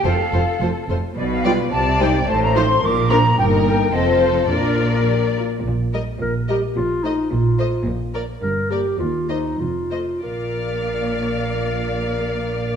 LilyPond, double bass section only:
\new Staff \with { instrumentName = "Double bass section" } { \clef bass \time 2/4 \key bes \major \tempo 4 = 107 f,,8 f,,8 f,,8 f,,8 | b,,4 c,4 | a,,4 bes,,4 | g,,4 f,,4 |
bes,,4. r8 | bes,,4 bes,,4 | bes,,4 bes,,4 | bes,,4 g,,4 |
ees,4 f,,4 | bes,,2~ | bes,,2 | }